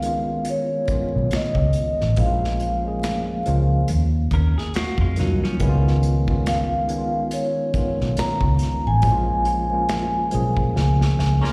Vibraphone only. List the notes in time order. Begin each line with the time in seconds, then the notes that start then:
Already playing: F5
0.50 C#5
1.35 D#5
2.20 F5
6.48 F5
7.33 C#5
8.19 A#5
8.87 G#5